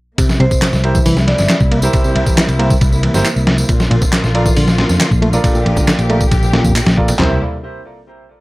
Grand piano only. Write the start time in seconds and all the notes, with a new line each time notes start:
0.84 E4 G4 A#4 C5
1.83 E4 G4 A#4 C5
2.60 E4 G4 A#4 C5
3.15 E4 G4 A#4 C5
4.35 F4 A4 A#4 D5
5.33 F4 A4 A#4 D5
6.10 F4 A4 A#4 D5
6.97 F4 A4 A#4 D5
7.20 E4 G4 A#4 C5